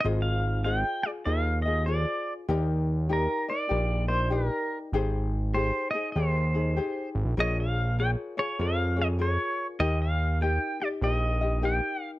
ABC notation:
X:1
M:4/4
L:1/16
Q:"Swing" 1/4=98
K:Eb
V:1 name="Pedal steel guitar"
e f3 g2 d2 f2 e2 d3 z | z4 B2 d4 c2 B3 z | z4 c2 e2 c6 z2 | e f3 g2 _d2 f2 e2 d3 z |
e f3 g2 d2 e4 g3 z |]
V:2 name="Ukulele"
[FAce]4 [FAce]2 [FA]2 [FAce]2 [FAe]2 [FAc]4 | [EGBd]4 [EGBd]2 [EBd]2 [EGBd]2 [EBd]2 [EGBd]4 | [EGAc]4 [EGAc]2 [EAc]2 [EGAc]2 [EAc]2 [EGAc]4 | [FAB_d]4 [FABd]2 [FAd]2 [FABd]2 [FAd]2 [FABd]4 |
[EGBe]4 [EGBe]2 [EG]2 [EGBe]2 [EGe]2 [EGBe]4 |]
V:3 name="Analog synth bass" clef=bass
A,,,8 E,,8 | E,,8 B,,,8 | A,,,8 E,,6 A,,, B,,, | B,,,8 F,,8 |
E,,8 B,,,8 |]